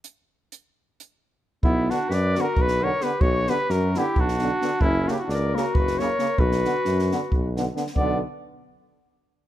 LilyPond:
<<
  \new Staff \with { instrumentName = "Cornet" } { \time 7/8 \key b \minor \tempo 4 = 133 r2. r8 | e'8 fis'8 d''8 ais'8 b'8 cis''8 b'8 | cis''8 b'8 ais'8 g'8 fis'4. | e'8 fis'32 g'32 fis'16 d''8 ais'8 b'8 cis''4 |
b'2~ b'8 r4 | d''8 r2. | }
  \new Staff \with { instrumentName = "Clarinet" } { \time 7/8 \key b \minor r2. r8 | b8 d'8 b'8 fis'8 fis'8 ais'8 g'8 | fis'8 g'8 fis'8 e'8 d'4. | cis'8 d'32 e'32 d'16 ais'8 fis'8 fis'8 ais'4 |
fis'2~ fis'8 r4 | b8 r2. | }
  \new Staff \with { instrumentName = "French horn" } { \time 7/8 \key b \minor r2. r8 | r8 b8 r8 b8 r8 b8 b8 | r8 b8 r8 b8 r8 b8 b8 | r8 ais8 r8 ais8 r8 ais8 ais8 |
r8 b8 r8 b8 r8 b8 b8 | b8 r2. | }
  \new Staff \with { instrumentName = "Trombone" } { \clef bass \time 7/8 \key b \minor r2. r8 | r8 d8 r8 d8 r8 d8 d8 | r8 d8 r8 d8 r8 d8 d8 | r8 cis8 r8 cis8 r8 cis8 cis8 |
r8 d8 r8 d8 r8 d8 d8 | d8 r2. | }
  \new Staff \with { instrumentName = "Tuba" } { \clef bass \time 7/8 \key b \minor r2. r8 | b,,4 fis,4 b,,4. | b,,4 fis,4 b,,4. | fis,,4 cis,4 fis,,4. |
b,,4 fis,4 b,,4. | b,,8 r2. | }
  \new DrumStaff \with { instrumentName = "Drums" } \drummode { \time 7/8 hh4 hh4 hh4. | bd8 sn8 sn8 sn8 bd16 sn8. sn8 | bd8 sn8 sn8 sn8 bd16 sn16 sn8 sn8 | bd8 sn8 sn8 sn8 bd16 sn16 sn8 sn8 |
bd16 sn16 sn8 sn16 sn16 sn8 bd8 sn8 sn16 sn16 | bd4 r4 r4. | }
>>